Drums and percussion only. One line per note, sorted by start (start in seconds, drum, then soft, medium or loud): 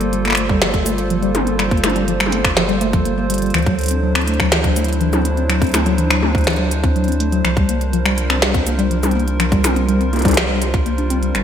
0.01 closed hi-hat soft
0.13 closed hi-hat medium
0.25 finger snap soft
0.25 closed hi-hat soft
0.28 finger snap soft
0.30 finger snap medium
0.32 finger snap medium
0.35 finger snap medium
0.35 closed hi-hat medium
0.49 kick loud
0.62 snare loud
0.62 closed hi-hat medium
0.74 kick loud
0.74 closed hi-hat soft
0.86 closed hi-hat medium
0.86 shaker medium
0.98 closed hi-hat soft
1.10 closed hi-hat medium
1.23 closed hi-hat soft
1.35 closed hi-hat medium
1.35 high tom medium
1.47 closed hi-hat soft
1.59 finger snap medium
1.59 closed hi-hat medium
1.71 kick loud
1.71 closed hi-hat soft
1.77 closed hi-hat soft
1.84 finger snap medium
1.84 closed hi-hat medium
1.84 high tom loud
1.90 closed hi-hat soft
1.96 closed hi-hat soft
2.08 closed hi-hat medium
2.20 finger snap medium
2.20 closed hi-hat soft
2.26 high tom medium
2.32 closed hi-hat medium
2.45 finger snap medium
2.45 kick loud
2.45 closed hi-hat soft
2.57 snare loud
2.57 closed hi-hat medium
2.69 closed hi-hat soft
2.81 closed hi-hat loud
2.93 kick loud
2.93 closed hi-hat soft
3.05 closed hi-hat medium
3.30 closed hi-hat medium
3.34 closed hi-hat medium
3.38 closed hi-hat medium
3.42 closed hi-hat soft
3.46 closed hi-hat soft
3.50 closed hi-hat soft
3.54 finger snap medium
3.54 closed hi-hat medium
3.58 closed hi-hat soft
3.62 closed hi-hat soft
3.66 kick loud
3.66 closed hi-hat soft
3.79 closed hi-hat soft
3.81 closed hi-hat medium
3.84 closed hi-hat medium
3.86 closed hi-hat medium
3.88 closed hi-hat medium
3.91 closed hi-hat soft
4.15 finger snap medium
4.15 closed hi-hat soft
4.21 closed hi-hat soft
4.28 closed hi-hat loud
4.34 closed hi-hat soft
4.40 finger snap medium
4.40 kick loud
4.40 closed hi-hat soft
4.52 snare loud
4.52 closed hi-hat medium
4.64 kick loud
4.64 closed hi-hat soft
4.76 closed hi-hat medium
4.76 shaker medium
4.84 closed hi-hat medium
4.88 closed hi-hat soft
4.93 closed hi-hat medium
5.01 closed hi-hat medium
5.13 closed hi-hat soft
5.13 high tom medium
5.13 shaker medium
5.25 closed hi-hat medium
5.37 closed hi-hat soft
5.50 finger snap medium
5.50 closed hi-hat medium
5.62 kick loud
5.62 closed hi-hat soft
5.64 closed hi-hat soft
5.67 closed hi-hat soft
5.69 closed hi-hat soft
5.71 finger snap medium
5.71 closed hi-hat soft
5.74 closed hi-hat loud
5.74 high tom medium
5.74 shaker medium
5.86 closed hi-hat soft
5.98 closed hi-hat medium
6.11 finger snap medium
6.11 closed hi-hat soft
6.23 high tom medium
6.35 kick loud
6.35 closed hi-hat soft
6.38 closed hi-hat soft
6.41 closed hi-hat soft
6.44 finger snap medium
6.44 snare loud
6.44 closed hi-hat soft
6.47 closed hi-hat medium
6.50 closed hi-hat soft
6.56 closed hi-hat soft
6.71 closed hi-hat loud
6.84 kick loud
6.84 closed hi-hat soft
6.96 closed hi-hat soft
7.04 closed hi-hat soft
7.08 closed hi-hat soft
7.12 closed hi-hat medium
7.20 closed hi-hat loud
7.32 closed hi-hat soft
7.45 finger snap medium
7.45 closed hi-hat medium
7.57 kick loud
7.57 closed hi-hat soft
7.69 closed hi-hat loud
7.81 closed hi-hat soft
7.93 closed hi-hat medium
8.06 finger snap medium
8.06 closed hi-hat soft
8.18 closed hi-hat medium
8.30 finger snap medium
8.30 closed hi-hat soft
8.42 snare loud
8.42 closed hi-hat medium
8.54 kick loud
8.54 closed hi-hat soft
8.67 closed hi-hat loud
8.67 shaker medium
8.79 closed hi-hat soft
8.91 closed hi-hat medium
9.03 closed hi-hat soft
9.03 high tom medium
9.03 shaker medium
9.11 closed hi-hat soft
9.19 closed hi-hat soft
9.28 closed hi-hat soft
9.40 finger snap medium
9.40 closed hi-hat medium
9.52 kick loud
9.52 closed hi-hat soft
9.64 finger snap medium
9.64 closed hi-hat loud
9.64 high tom medium
9.64 shaker medium
9.76 closed hi-hat soft
9.89 closed hi-hat medium
10.01 closed hi-hat soft
10.13 closed hi-hat soft
10.13 high tom soft
10.16 closed hi-hat soft
10.16 high tom soft
10.19 closed hi-hat medium
10.19 high tom soft
10.22 kick loud
10.22 closed hi-hat medium
10.25 closed hi-hat medium
10.25 high tom medium
10.28 closed hi-hat medium
10.28 high tom medium
10.31 closed hi-hat medium
10.31 high tom medium
10.34 finger snap medium
10.34 snare loud
10.34 closed hi-hat medium
10.62 closed hi-hat medium
10.74 kick loud
10.74 closed hi-hat soft
10.86 closed hi-hat medium
10.98 closed hi-hat soft
11.10 closed hi-hat medium
11.23 closed hi-hat soft
11.35 finger snap medium
11.35 closed hi-hat medium